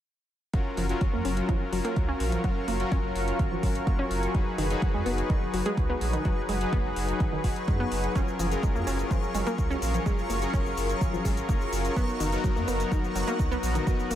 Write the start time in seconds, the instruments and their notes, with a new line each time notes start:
0.54 analog synth bass F#1, supersaw synth F#3 C#4 F4 F#4 A#4, ambient pad A#4 F5 C#6, synth texture C#6, kick, closed hi-hat
0.77 analog synth bass F#1, synth pluck F3, open hi-hat
0.89 supersaw synth F#3 C#4 F4 F#4 A#4, closed hi-hat
1.01 analog synth bass F#1, synth pluck F#3, kick, closed hi-hat
1.13 analog synth bass F#2, synth pluck A#3
1.25 analog synth bass F#1, synth pluck C#4, open hi-hat
1.37 closed hi-hat
1.49 analog synth bass F#1, synth pluck F3, kick, closed hi-hat
1.73 analog synth bass F#1, synth pluck F#3, open hi-hat
1.85 synth pluck A#3, closed hi-hat
1.96 analog synth bass C#2, kick, closed hi-hat
2.08 synth pluck C#4
2.20 analog synth bass A#1, open hi-hat
2.32 synth pluck F3, closed hi-hat
2.44 analog synth bass F#1, synth pluck F#3, supersaw synth F#3 C#4 F4 F#4 A#4, ambient pad G#5, kick, closed hi-hat
2.68 analog synth bass F#1, synth pluck A#3, open hi-hat
2.80 supersaw synth F#3 C#4 F4 F#4 A#4, closed hi-hat
2.92 analog synth bass F#1, synth pluck C#4, kick, closed hi-hat
3.04 analog synth bass F#1
3.15 analog synth bass F#1, open hi-hat
3.28 closed hi-hat
3.39 analog synth bass G#1, kick, closed hi-hat
3.51 synth pluck F3
3.63 analog synth bass G#1, synth pluck F#3, kick, open hi-hat
3.75 closed hi-hat
3.87 analog synth bass F#1, synth pluck A#3, kick, closed hi-hat
3.99 synth pluck C#4
4.11 analog synth bass F#1, open hi-hat
4.23 closed hi-hat
4.35 analog synth bass F#1, supersaw synth F#3 D#4 F#4 G#4 B4, ambient pad B4 F#5 G#5 D#6, kick, closed hi-hat
4.58 analog synth bass F#1, synth pluck D#3, open hi-hat
4.70 supersaw synth F#3 D#4 F#4 G#4 B4, closed hi-hat
4.82 analog synth bass F#1, synth pluck F#3, kick, closed hi-hat
4.94 analog synth bass F#2, synth pluck G#3
5.06 analog synth bass F#1, synth pluck B3, open hi-hat
5.18 closed hi-hat
5.30 analog synth bass F#1, synth pluck D#3, kick, closed hi-hat
5.54 analog synth bass F#1, synth pluck F#3, open hi-hat
5.66 synth pluck G#3, closed hi-hat
5.77 analog synth bass C#2, kick, closed hi-hat
5.90 synth pluck B3
6.01 analog synth bass A#1, open hi-hat
6.13 synth pluck D#3, closed hi-hat
6.25 analog synth bass F#1, synth pluck F#3, supersaw synth F#3 D#4 F#4 G#4 B4, kick, closed hi-hat
6.49 analog synth bass F#1, synth pluck G#3, open hi-hat
6.61 supersaw synth F#3 D#4 F#4 G#4 B4, closed hi-hat
6.73 analog synth bass F#1, synth pluck B3, kick, closed hi-hat
6.85 analog synth bass F#1
6.96 analog synth bass F#1, open hi-hat
7.09 closed hi-hat
7.20 analog synth bass G#1, kick, closed hi-hat
7.32 synth pluck D#3
7.44 analog synth bass F#1, synth pluck F#3, kick, open hi-hat
7.56 closed hi-hat
7.68 analog synth bass F#2, synth pluck G#3, kick, closed hi-hat
7.80 synth pluck B3
7.92 analog synth bass F#1, open hi-hat
8.04 closed hi-hat
8.15 analog synth bass F#1, supersaw synth F#3 C#4 F4 G#4 A#4, synth pluck C#4, ambient pad A#4 F5 C#6, kick, closed hi-hat, shaker
8.28 shaker
8.39 analog synth bass F#1, synth pluck F3, open hi-hat, shaker
8.51 supersaw synth F#3 C#4 F4 G#4 A#4, closed hi-hat, shaker
8.63 analog synth bass F#1, synth pluck G#3, kick, closed hi-hat, shaker
8.75 analog synth bass F#2, synth pluck A#3, shaker
8.87 analog synth bass F#1, synth pluck C#4, open hi-hat, shaker
8.99 closed hi-hat, shaker
9.11 analog synth bass F#1, synth pluck F3, kick, closed hi-hat, shaker
9.23 shaker
9.35 analog synth bass F#1, synth pluck G#3, open hi-hat, shaker
9.47 synth pluck A#3, closed hi-hat, shaker
9.58 analog synth bass C#2, kick, closed hi-hat, shaker
9.70 synth pluck C#4, shaker
9.82 analog synth bass A#1, open hi-hat, shaker
9.94 synth pluck F3, closed hi-hat, shaker
10.06 analog synth bass F#1, supersaw synth F#3 C#4 F4 G#4, synth pluck G#3, ambient pad A#5, kick, closed hi-hat, shaker
10.18 shaker
10.30 analog synth bass F#1, synth pluck A#3, open hi-hat, shaker
10.42 supersaw synth F#3 C#4 F4 G#4 A#4, closed hi-hat, shaker
10.54 analog synth bass F#1, synth pluck C#4, kick, closed hi-hat, shaker
10.66 analog synth bass F#1, shaker
10.77 analog synth bass F#1, open hi-hat, shaker
10.90 closed hi-hat, shaker
11.01 analog synth bass G#1, kick, closed hi-hat, shaker
11.13 synth pluck F3, shaker
11.25 analog synth bass G#1, synth pluck G#3, kick, open hi-hat, shaker
11.37 closed hi-hat, shaker
11.49 analog synth bass F#1, synth pluck A#3, kick, closed hi-hat, shaker
11.61 shaker
11.73 analog synth bass F#1, open hi-hat, shaker
11.85 closed hi-hat, shaker
11.96 analog synth bass F#1, supersaw synth F#3 B3 D#4 F#4 A#4, synth pluck B3, ambient pad B3 F#5 D#6, kick, closed hi-hat, shaker
12.09 shaker
12.20 analog synth bass F#1, synth pluck D#3, open hi-hat, shaker
12.32 supersaw synth F#3 B3 D#4 F#4 A#4, closed hi-hat, shaker
12.44 analog synth bass F#1, synth pluck F#3, kick, closed hi-hat, shaker
12.56 analog synth bass F#2, synth pluck A#3, shaker
12.68 analog synth bass F#1, synth pluck B3, open hi-hat, shaker
12.80 closed hi-hat, shaker
12.92 analog synth bass F#1, synth pluck D#3, kick, closed hi-hat, shaker
13.04 shaker
13.15 analog synth bass F#1, synth pluck F#3, open hi-hat, shaker
13.28 synth pluck A#3, closed hi-hat, shaker
13.39 analog synth bass C#2, kick, closed hi-hat, shaker
13.51 synth pluck B3, shaker
13.63 analog synth bass A#1, open hi-hat, shaker
13.75 synth pluck D#3, closed hi-hat, shaker
13.87 analog synth bass F#1, synth pluck F#3, supersaw synth F#3 B3 D#4 F#4 A#4, kick, closed hi-hat, shaker
13.99 shaker
14.11 analog synth bass F#1, synth pluck A#3, open hi-hat, shaker